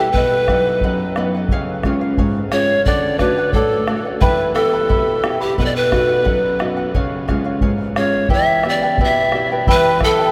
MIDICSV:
0, 0, Header, 1, 6, 480
1, 0, Start_track
1, 0, Tempo, 680272
1, 99, Time_signature, 2, 2, 24, 8
1, 7279, End_track
2, 0, Start_track
2, 0, Title_t, "Quena"
2, 0, Program_c, 0, 77
2, 6826, Note_on_c, 0, 83, 84
2, 7048, Note_off_c, 0, 83, 0
2, 7080, Note_on_c, 0, 81, 89
2, 7279, Note_off_c, 0, 81, 0
2, 7279, End_track
3, 0, Start_track
3, 0, Title_t, "Charango"
3, 0, Program_c, 1, 24
3, 0, Note_on_c, 1, 64, 36
3, 0, Note_on_c, 1, 71, 43
3, 0, Note_on_c, 1, 79, 52
3, 102, Note_off_c, 1, 79, 0
3, 105, Note_off_c, 1, 71, 0
3, 107, Note_off_c, 1, 64, 0
3, 114, Note_on_c, 1, 71, 68
3, 115, Note_on_c, 1, 78, 81
3, 117, Note_on_c, 1, 75, 67
3, 338, Note_off_c, 1, 71, 0
3, 342, Note_off_c, 1, 75, 0
3, 342, Note_off_c, 1, 78, 0
3, 347, Note_on_c, 1, 71, 55
3, 351, Note_on_c, 1, 75, 57
3, 351, Note_on_c, 1, 78, 68
3, 460, Note_off_c, 1, 78, 0
3, 463, Note_off_c, 1, 71, 0
3, 465, Note_off_c, 1, 75, 0
3, 468, Note_on_c, 1, 78, 43
3, 478, Note_on_c, 1, 75, 41
3, 583, Note_off_c, 1, 78, 0
3, 586, Note_off_c, 1, 75, 0
3, 590, Note_on_c, 1, 71, 64
3, 594, Note_on_c, 1, 75, 64
3, 594, Note_on_c, 1, 78, 64
3, 818, Note_off_c, 1, 71, 0
3, 819, Note_off_c, 1, 75, 0
3, 826, Note_off_c, 1, 78, 0
3, 827, Note_on_c, 1, 71, 62
3, 828, Note_on_c, 1, 75, 63
3, 834, Note_on_c, 1, 78, 65
3, 941, Note_off_c, 1, 78, 0
3, 942, Note_off_c, 1, 71, 0
3, 943, Note_off_c, 1, 75, 0
3, 950, Note_on_c, 1, 78, 44
3, 963, Note_on_c, 1, 75, 45
3, 1064, Note_off_c, 1, 78, 0
3, 1069, Note_on_c, 1, 68, 76
3, 1070, Note_off_c, 1, 75, 0
3, 1074, Note_on_c, 1, 73, 83
3, 1076, Note_on_c, 1, 77, 99
3, 1296, Note_off_c, 1, 68, 0
3, 1301, Note_off_c, 1, 73, 0
3, 1304, Note_on_c, 1, 68, 64
3, 1307, Note_off_c, 1, 77, 0
3, 1309, Note_on_c, 1, 73, 73
3, 1314, Note_on_c, 1, 77, 76
3, 1411, Note_off_c, 1, 77, 0
3, 1419, Note_on_c, 1, 77, 52
3, 1421, Note_off_c, 1, 68, 0
3, 1423, Note_off_c, 1, 73, 0
3, 1433, Note_on_c, 1, 73, 41
3, 1534, Note_off_c, 1, 77, 0
3, 1535, Note_off_c, 1, 73, 0
3, 1538, Note_on_c, 1, 68, 67
3, 1543, Note_on_c, 1, 73, 68
3, 1543, Note_on_c, 1, 77, 75
3, 1773, Note_off_c, 1, 68, 0
3, 1780, Note_off_c, 1, 73, 0
3, 1780, Note_off_c, 1, 77, 0
3, 1782, Note_on_c, 1, 68, 46
3, 1787, Note_on_c, 1, 73, 55
3, 1790, Note_on_c, 1, 77, 53
3, 1894, Note_off_c, 1, 77, 0
3, 1900, Note_off_c, 1, 68, 0
3, 1902, Note_off_c, 1, 73, 0
3, 1903, Note_on_c, 1, 77, 41
3, 1917, Note_on_c, 1, 73, 38
3, 2019, Note_on_c, 1, 69, 70
3, 2020, Note_off_c, 1, 77, 0
3, 2027, Note_off_c, 1, 73, 0
3, 2028, Note_on_c, 1, 74, 66
3, 2029, Note_on_c, 1, 78, 74
3, 2253, Note_off_c, 1, 69, 0
3, 2258, Note_off_c, 1, 74, 0
3, 2262, Note_off_c, 1, 78, 0
3, 2262, Note_on_c, 1, 69, 59
3, 2267, Note_on_c, 1, 74, 62
3, 2270, Note_on_c, 1, 78, 54
3, 2377, Note_off_c, 1, 78, 0
3, 2380, Note_off_c, 1, 69, 0
3, 2382, Note_off_c, 1, 74, 0
3, 2385, Note_on_c, 1, 78, 44
3, 2396, Note_on_c, 1, 74, 41
3, 2498, Note_off_c, 1, 74, 0
3, 2500, Note_off_c, 1, 78, 0
3, 2503, Note_on_c, 1, 69, 56
3, 2506, Note_on_c, 1, 74, 65
3, 2508, Note_on_c, 1, 78, 65
3, 2728, Note_off_c, 1, 69, 0
3, 2730, Note_off_c, 1, 74, 0
3, 2736, Note_off_c, 1, 78, 0
3, 2737, Note_on_c, 1, 69, 49
3, 2739, Note_on_c, 1, 74, 50
3, 2745, Note_on_c, 1, 78, 51
3, 2851, Note_off_c, 1, 78, 0
3, 2857, Note_off_c, 1, 69, 0
3, 2857, Note_off_c, 1, 74, 0
3, 2860, Note_on_c, 1, 78, 43
3, 2872, Note_on_c, 1, 74, 37
3, 2968, Note_off_c, 1, 74, 0
3, 2969, Note_off_c, 1, 78, 0
3, 2970, Note_on_c, 1, 67, 68
3, 2972, Note_on_c, 1, 79, 66
3, 2973, Note_on_c, 1, 64, 69
3, 2974, Note_on_c, 1, 76, 77
3, 2975, Note_on_c, 1, 83, 81
3, 3205, Note_off_c, 1, 79, 0
3, 3209, Note_off_c, 1, 64, 0
3, 3211, Note_off_c, 1, 76, 0
3, 3214, Note_off_c, 1, 67, 0
3, 3214, Note_on_c, 1, 79, 50
3, 3216, Note_off_c, 1, 83, 0
3, 3218, Note_on_c, 1, 64, 57
3, 3220, Note_on_c, 1, 76, 63
3, 3226, Note_on_c, 1, 83, 57
3, 3330, Note_off_c, 1, 83, 0
3, 3332, Note_off_c, 1, 76, 0
3, 3336, Note_off_c, 1, 79, 0
3, 3338, Note_off_c, 1, 64, 0
3, 3338, Note_on_c, 1, 83, 48
3, 3340, Note_on_c, 1, 76, 37
3, 3346, Note_on_c, 1, 64, 36
3, 3445, Note_off_c, 1, 64, 0
3, 3447, Note_off_c, 1, 76, 0
3, 3447, Note_off_c, 1, 83, 0
3, 3448, Note_on_c, 1, 67, 59
3, 3452, Note_on_c, 1, 79, 58
3, 3454, Note_on_c, 1, 64, 68
3, 3456, Note_on_c, 1, 76, 73
3, 3456, Note_on_c, 1, 83, 61
3, 3688, Note_off_c, 1, 79, 0
3, 3693, Note_off_c, 1, 67, 0
3, 3694, Note_off_c, 1, 64, 0
3, 3695, Note_off_c, 1, 76, 0
3, 3695, Note_off_c, 1, 83, 0
3, 3697, Note_on_c, 1, 79, 52
3, 3702, Note_on_c, 1, 64, 54
3, 3703, Note_on_c, 1, 76, 55
3, 3704, Note_on_c, 1, 83, 56
3, 3804, Note_off_c, 1, 83, 0
3, 3807, Note_off_c, 1, 76, 0
3, 3813, Note_on_c, 1, 83, 47
3, 3814, Note_off_c, 1, 64, 0
3, 3816, Note_on_c, 1, 76, 37
3, 3818, Note_off_c, 1, 79, 0
3, 3822, Note_on_c, 1, 64, 37
3, 3934, Note_off_c, 1, 64, 0
3, 3936, Note_off_c, 1, 83, 0
3, 3937, Note_off_c, 1, 76, 0
3, 3937, Note_on_c, 1, 71, 73
3, 3940, Note_on_c, 1, 75, 72
3, 3944, Note_on_c, 1, 78, 73
3, 4164, Note_off_c, 1, 71, 0
3, 4170, Note_off_c, 1, 75, 0
3, 4172, Note_on_c, 1, 71, 51
3, 4174, Note_off_c, 1, 78, 0
3, 4179, Note_on_c, 1, 75, 62
3, 4182, Note_on_c, 1, 78, 59
3, 4288, Note_off_c, 1, 78, 0
3, 4296, Note_off_c, 1, 71, 0
3, 4297, Note_on_c, 1, 78, 43
3, 4299, Note_off_c, 1, 75, 0
3, 4311, Note_on_c, 1, 75, 38
3, 4397, Note_off_c, 1, 75, 0
3, 4402, Note_off_c, 1, 78, 0
3, 4404, Note_on_c, 1, 71, 58
3, 4405, Note_on_c, 1, 75, 64
3, 4410, Note_on_c, 1, 78, 76
3, 4641, Note_off_c, 1, 71, 0
3, 4645, Note_off_c, 1, 78, 0
3, 4646, Note_off_c, 1, 75, 0
3, 4649, Note_on_c, 1, 71, 58
3, 4654, Note_on_c, 1, 75, 57
3, 4654, Note_on_c, 1, 78, 59
3, 4767, Note_off_c, 1, 78, 0
3, 4775, Note_off_c, 1, 71, 0
3, 4775, Note_on_c, 1, 78, 46
3, 4778, Note_off_c, 1, 75, 0
3, 4786, Note_on_c, 1, 75, 44
3, 4898, Note_off_c, 1, 78, 0
3, 4899, Note_off_c, 1, 75, 0
3, 4900, Note_on_c, 1, 68, 79
3, 4902, Note_on_c, 1, 73, 81
3, 4910, Note_on_c, 1, 77, 88
3, 5126, Note_off_c, 1, 68, 0
3, 5133, Note_off_c, 1, 77, 0
3, 5135, Note_on_c, 1, 68, 67
3, 5136, Note_off_c, 1, 73, 0
3, 5142, Note_on_c, 1, 77, 79
3, 5144, Note_on_c, 1, 73, 71
3, 5244, Note_off_c, 1, 77, 0
3, 5251, Note_off_c, 1, 73, 0
3, 5253, Note_on_c, 1, 77, 50
3, 5258, Note_off_c, 1, 68, 0
3, 5260, Note_on_c, 1, 73, 46
3, 5367, Note_off_c, 1, 73, 0
3, 5372, Note_off_c, 1, 77, 0
3, 5376, Note_on_c, 1, 68, 64
3, 5376, Note_on_c, 1, 73, 80
3, 5380, Note_on_c, 1, 77, 69
3, 5609, Note_off_c, 1, 68, 0
3, 5618, Note_on_c, 1, 68, 50
3, 5619, Note_off_c, 1, 73, 0
3, 5621, Note_off_c, 1, 77, 0
3, 5628, Note_on_c, 1, 73, 49
3, 5631, Note_on_c, 1, 77, 64
3, 5728, Note_off_c, 1, 77, 0
3, 5737, Note_on_c, 1, 77, 47
3, 5739, Note_off_c, 1, 73, 0
3, 5740, Note_off_c, 1, 68, 0
3, 5748, Note_on_c, 1, 73, 40
3, 5849, Note_off_c, 1, 73, 0
3, 5852, Note_on_c, 1, 67, 72
3, 5855, Note_off_c, 1, 77, 0
3, 5856, Note_on_c, 1, 64, 69
3, 5857, Note_on_c, 1, 71, 71
3, 5858, Note_on_c, 1, 76, 69
3, 5859, Note_on_c, 1, 79, 67
3, 6086, Note_off_c, 1, 76, 0
3, 6092, Note_off_c, 1, 64, 0
3, 6093, Note_off_c, 1, 71, 0
3, 6094, Note_on_c, 1, 76, 52
3, 6095, Note_off_c, 1, 79, 0
3, 6097, Note_off_c, 1, 67, 0
3, 6100, Note_on_c, 1, 64, 64
3, 6101, Note_on_c, 1, 71, 59
3, 6104, Note_on_c, 1, 79, 57
3, 6219, Note_off_c, 1, 76, 0
3, 6219, Note_off_c, 1, 79, 0
3, 6222, Note_off_c, 1, 64, 0
3, 6222, Note_off_c, 1, 71, 0
3, 6227, Note_on_c, 1, 79, 53
3, 6234, Note_on_c, 1, 71, 41
3, 6237, Note_on_c, 1, 64, 35
3, 6345, Note_off_c, 1, 79, 0
3, 6347, Note_off_c, 1, 64, 0
3, 6347, Note_off_c, 1, 71, 0
3, 6354, Note_on_c, 1, 67, 61
3, 6355, Note_on_c, 1, 71, 72
3, 6355, Note_on_c, 1, 76, 66
3, 6356, Note_on_c, 1, 64, 63
3, 6362, Note_on_c, 1, 79, 65
3, 6582, Note_off_c, 1, 76, 0
3, 6585, Note_off_c, 1, 64, 0
3, 6589, Note_off_c, 1, 67, 0
3, 6589, Note_off_c, 1, 71, 0
3, 6591, Note_off_c, 1, 79, 0
3, 6591, Note_on_c, 1, 76, 47
3, 6594, Note_on_c, 1, 64, 46
3, 6598, Note_on_c, 1, 71, 59
3, 6599, Note_on_c, 1, 79, 51
3, 6706, Note_off_c, 1, 79, 0
3, 6707, Note_off_c, 1, 76, 0
3, 6708, Note_off_c, 1, 64, 0
3, 6710, Note_off_c, 1, 71, 0
3, 6715, Note_on_c, 1, 79, 41
3, 6718, Note_on_c, 1, 71, 43
3, 6724, Note_on_c, 1, 64, 35
3, 6821, Note_off_c, 1, 64, 0
3, 6825, Note_off_c, 1, 71, 0
3, 6826, Note_off_c, 1, 79, 0
3, 6827, Note_on_c, 1, 67, 71
3, 6828, Note_on_c, 1, 76, 74
3, 6829, Note_on_c, 1, 64, 76
3, 6834, Note_on_c, 1, 71, 82
3, 6834, Note_on_c, 1, 79, 87
3, 7062, Note_off_c, 1, 76, 0
3, 7065, Note_off_c, 1, 67, 0
3, 7066, Note_off_c, 1, 64, 0
3, 7067, Note_off_c, 1, 71, 0
3, 7069, Note_off_c, 1, 79, 0
3, 7070, Note_on_c, 1, 76, 53
3, 7075, Note_on_c, 1, 64, 61
3, 7075, Note_on_c, 1, 71, 71
3, 7083, Note_on_c, 1, 79, 59
3, 7177, Note_off_c, 1, 79, 0
3, 7183, Note_off_c, 1, 71, 0
3, 7186, Note_on_c, 1, 79, 49
3, 7187, Note_off_c, 1, 76, 0
3, 7189, Note_off_c, 1, 64, 0
3, 7192, Note_on_c, 1, 71, 42
3, 7199, Note_on_c, 1, 64, 40
3, 7279, Note_off_c, 1, 64, 0
3, 7279, Note_off_c, 1, 71, 0
3, 7279, Note_off_c, 1, 79, 0
3, 7279, End_track
4, 0, Start_track
4, 0, Title_t, "Pan flute"
4, 0, Program_c, 2, 75
4, 0, Note_on_c, 2, 67, 71
4, 81, Note_off_c, 2, 67, 0
4, 85, Note_on_c, 2, 71, 86
4, 783, Note_off_c, 2, 71, 0
4, 1778, Note_on_c, 2, 73, 83
4, 2001, Note_off_c, 2, 73, 0
4, 2014, Note_on_c, 2, 74, 82
4, 2250, Note_on_c, 2, 71, 78
4, 2261, Note_off_c, 2, 74, 0
4, 2490, Note_on_c, 2, 69, 80
4, 2500, Note_off_c, 2, 71, 0
4, 2854, Note_off_c, 2, 69, 0
4, 2970, Note_on_c, 2, 71, 81
4, 3197, Note_off_c, 2, 71, 0
4, 3206, Note_on_c, 2, 69, 76
4, 3819, Note_on_c, 2, 67, 68
4, 3829, Note_off_c, 2, 69, 0
4, 3939, Note_off_c, 2, 67, 0
4, 3948, Note_on_c, 2, 71, 70
4, 3989, Note_on_c, 2, 74, 62
4, 4000, Note_off_c, 2, 71, 0
4, 4062, Note_on_c, 2, 71, 82
4, 4073, Note_off_c, 2, 74, 0
4, 4672, Note_off_c, 2, 71, 0
4, 5622, Note_on_c, 2, 73, 68
4, 5846, Note_off_c, 2, 73, 0
4, 5881, Note_on_c, 2, 76, 91
4, 6134, Note_on_c, 2, 74, 78
4, 6145, Note_off_c, 2, 76, 0
4, 6359, Note_off_c, 2, 74, 0
4, 6382, Note_on_c, 2, 76, 78
4, 6699, Note_off_c, 2, 76, 0
4, 6850, Note_on_c, 2, 71, 97
4, 7061, Note_off_c, 2, 71, 0
4, 7086, Note_on_c, 2, 69, 96
4, 7279, Note_off_c, 2, 69, 0
4, 7279, End_track
5, 0, Start_track
5, 0, Title_t, "Nylon-string guitar"
5, 0, Program_c, 3, 24
5, 0, Note_on_c, 3, 47, 50
5, 85, Note_off_c, 3, 47, 0
5, 104, Note_on_c, 3, 47, 59
5, 346, Note_on_c, 3, 54, 41
5, 350, Note_on_c, 3, 59, 40
5, 350, Note_on_c, 3, 63, 48
5, 567, Note_off_c, 3, 47, 0
5, 591, Note_on_c, 3, 42, 60
5, 727, Note_off_c, 3, 54, 0
5, 727, Note_off_c, 3, 59, 0
5, 729, Note_off_c, 3, 63, 0
5, 824, Note_on_c, 3, 54, 43
5, 828, Note_on_c, 3, 59, 41
5, 831, Note_on_c, 3, 63, 51
5, 1014, Note_off_c, 3, 54, 0
5, 1016, Note_off_c, 3, 59, 0
5, 1018, Note_off_c, 3, 63, 0
5, 1050, Note_off_c, 3, 42, 0
5, 1066, Note_on_c, 3, 49, 53
5, 1299, Note_on_c, 3, 56, 42
5, 1304, Note_on_c, 3, 61, 39
5, 1306, Note_on_c, 3, 65, 47
5, 1527, Note_off_c, 3, 49, 0
5, 1548, Note_on_c, 3, 44, 53
5, 1682, Note_off_c, 3, 56, 0
5, 1685, Note_off_c, 3, 61, 0
5, 1686, Note_off_c, 3, 65, 0
5, 1779, Note_on_c, 3, 56, 47
5, 1783, Note_on_c, 3, 61, 38
5, 1787, Note_on_c, 3, 65, 45
5, 1971, Note_off_c, 3, 56, 0
5, 1972, Note_off_c, 3, 61, 0
5, 1975, Note_off_c, 3, 65, 0
5, 2008, Note_off_c, 3, 44, 0
5, 2027, Note_on_c, 3, 50, 64
5, 2252, Note_on_c, 3, 57, 42
5, 2261, Note_on_c, 3, 62, 41
5, 2265, Note_on_c, 3, 66, 42
5, 2488, Note_off_c, 3, 50, 0
5, 2501, Note_on_c, 3, 45, 50
5, 2639, Note_off_c, 3, 57, 0
5, 2644, Note_off_c, 3, 62, 0
5, 2645, Note_off_c, 3, 66, 0
5, 2736, Note_on_c, 3, 57, 45
5, 2742, Note_on_c, 3, 62, 39
5, 2746, Note_on_c, 3, 66, 46
5, 2929, Note_off_c, 3, 57, 0
5, 2932, Note_off_c, 3, 62, 0
5, 2935, Note_off_c, 3, 66, 0
5, 2965, Note_off_c, 3, 45, 0
5, 2971, Note_on_c, 3, 52, 58
5, 3214, Note_on_c, 3, 59, 43
5, 3220, Note_on_c, 3, 64, 40
5, 3224, Note_on_c, 3, 67, 47
5, 3441, Note_off_c, 3, 52, 0
5, 3456, Note_on_c, 3, 47, 47
5, 3600, Note_off_c, 3, 59, 0
5, 3604, Note_off_c, 3, 64, 0
5, 3605, Note_off_c, 3, 67, 0
5, 3694, Note_on_c, 3, 59, 41
5, 3697, Note_on_c, 3, 64, 41
5, 3699, Note_on_c, 3, 67, 47
5, 3889, Note_off_c, 3, 59, 0
5, 3890, Note_off_c, 3, 64, 0
5, 3891, Note_off_c, 3, 67, 0
5, 3924, Note_off_c, 3, 47, 0
5, 3942, Note_on_c, 3, 47, 65
5, 4175, Note_on_c, 3, 59, 42
5, 4181, Note_on_c, 3, 63, 36
5, 4181, Note_on_c, 3, 66, 48
5, 4407, Note_off_c, 3, 47, 0
5, 4416, Note_on_c, 3, 42, 55
5, 4562, Note_off_c, 3, 59, 0
5, 4563, Note_off_c, 3, 63, 0
5, 4565, Note_off_c, 3, 66, 0
5, 4660, Note_on_c, 3, 59, 39
5, 4662, Note_on_c, 3, 63, 42
5, 4668, Note_on_c, 3, 66, 47
5, 4854, Note_off_c, 3, 59, 0
5, 4854, Note_off_c, 3, 63, 0
5, 4854, Note_off_c, 3, 66, 0
5, 4884, Note_off_c, 3, 42, 0
5, 4902, Note_on_c, 3, 49, 54
5, 5144, Note_on_c, 3, 56, 41
5, 5150, Note_on_c, 3, 61, 38
5, 5152, Note_on_c, 3, 65, 46
5, 5368, Note_off_c, 3, 49, 0
5, 5379, Note_on_c, 3, 44, 60
5, 5527, Note_off_c, 3, 56, 0
5, 5531, Note_off_c, 3, 61, 0
5, 5531, Note_off_c, 3, 65, 0
5, 5621, Note_on_c, 3, 56, 43
5, 5626, Note_on_c, 3, 61, 38
5, 5628, Note_on_c, 3, 65, 44
5, 5814, Note_off_c, 3, 56, 0
5, 5817, Note_off_c, 3, 61, 0
5, 5817, Note_off_c, 3, 65, 0
5, 5847, Note_off_c, 3, 44, 0
5, 5864, Note_on_c, 3, 52, 57
5, 6105, Note_on_c, 3, 59, 47
5, 6110, Note_on_c, 3, 64, 37
5, 6113, Note_on_c, 3, 67, 42
5, 6329, Note_off_c, 3, 52, 0
5, 6342, Note_on_c, 3, 47, 52
5, 6488, Note_off_c, 3, 59, 0
5, 6491, Note_off_c, 3, 64, 0
5, 6493, Note_off_c, 3, 67, 0
5, 6580, Note_on_c, 3, 59, 45
5, 6585, Note_on_c, 3, 64, 36
5, 6591, Note_on_c, 3, 67, 44
5, 6774, Note_off_c, 3, 59, 0
5, 6777, Note_off_c, 3, 64, 0
5, 6778, Note_off_c, 3, 67, 0
5, 6809, Note_off_c, 3, 47, 0
5, 6829, Note_on_c, 3, 52, 65
5, 7279, Note_off_c, 3, 52, 0
5, 7279, End_track
6, 0, Start_track
6, 0, Title_t, "Bombo"
6, 98, Note_on_c, 9, 43, 54
6, 168, Note_off_c, 9, 43, 0
6, 338, Note_on_c, 9, 37, 42
6, 338, Note_on_c, 9, 43, 46
6, 409, Note_off_c, 9, 37, 0
6, 409, Note_off_c, 9, 43, 0
6, 571, Note_on_c, 9, 43, 50
6, 641, Note_off_c, 9, 43, 0
6, 818, Note_on_c, 9, 37, 47
6, 889, Note_off_c, 9, 37, 0
6, 1048, Note_on_c, 9, 43, 57
6, 1118, Note_off_c, 9, 43, 0
6, 1294, Note_on_c, 9, 37, 44
6, 1294, Note_on_c, 9, 43, 46
6, 1365, Note_off_c, 9, 37, 0
6, 1365, Note_off_c, 9, 43, 0
6, 1535, Note_on_c, 9, 43, 53
6, 1605, Note_off_c, 9, 43, 0
6, 1776, Note_on_c, 9, 37, 46
6, 1846, Note_off_c, 9, 37, 0
6, 2018, Note_on_c, 9, 43, 59
6, 2088, Note_off_c, 9, 43, 0
6, 2252, Note_on_c, 9, 37, 42
6, 2252, Note_on_c, 9, 43, 47
6, 2323, Note_off_c, 9, 37, 0
6, 2323, Note_off_c, 9, 43, 0
6, 2489, Note_on_c, 9, 43, 58
6, 2560, Note_off_c, 9, 43, 0
6, 2734, Note_on_c, 9, 37, 50
6, 2805, Note_off_c, 9, 37, 0
6, 2973, Note_on_c, 9, 43, 74
6, 3044, Note_off_c, 9, 43, 0
6, 3216, Note_on_c, 9, 37, 44
6, 3286, Note_off_c, 9, 37, 0
6, 3456, Note_on_c, 9, 43, 56
6, 3527, Note_off_c, 9, 43, 0
6, 3695, Note_on_c, 9, 37, 53
6, 3766, Note_off_c, 9, 37, 0
6, 3937, Note_on_c, 9, 43, 51
6, 4008, Note_off_c, 9, 43, 0
6, 4178, Note_on_c, 9, 37, 42
6, 4178, Note_on_c, 9, 43, 48
6, 4249, Note_off_c, 9, 37, 0
6, 4249, Note_off_c, 9, 43, 0
6, 4416, Note_on_c, 9, 43, 49
6, 4487, Note_off_c, 9, 43, 0
6, 4657, Note_on_c, 9, 37, 45
6, 4728, Note_off_c, 9, 37, 0
6, 4900, Note_on_c, 9, 43, 54
6, 4971, Note_off_c, 9, 43, 0
6, 5141, Note_on_c, 9, 37, 40
6, 5141, Note_on_c, 9, 43, 46
6, 5211, Note_off_c, 9, 37, 0
6, 5211, Note_off_c, 9, 43, 0
6, 5369, Note_on_c, 9, 43, 56
6, 5440, Note_off_c, 9, 43, 0
6, 5618, Note_on_c, 9, 37, 54
6, 5689, Note_off_c, 9, 37, 0
6, 5847, Note_on_c, 9, 43, 60
6, 5917, Note_off_c, 9, 43, 0
6, 6093, Note_on_c, 9, 37, 45
6, 6164, Note_off_c, 9, 37, 0
6, 6335, Note_on_c, 9, 43, 58
6, 6405, Note_off_c, 9, 43, 0
6, 6578, Note_on_c, 9, 37, 47
6, 6648, Note_off_c, 9, 37, 0
6, 6823, Note_on_c, 9, 43, 62
6, 6894, Note_off_c, 9, 43, 0
6, 7060, Note_on_c, 9, 37, 46
6, 7060, Note_on_c, 9, 43, 51
6, 7130, Note_off_c, 9, 37, 0
6, 7130, Note_off_c, 9, 43, 0
6, 7279, End_track
0, 0, End_of_file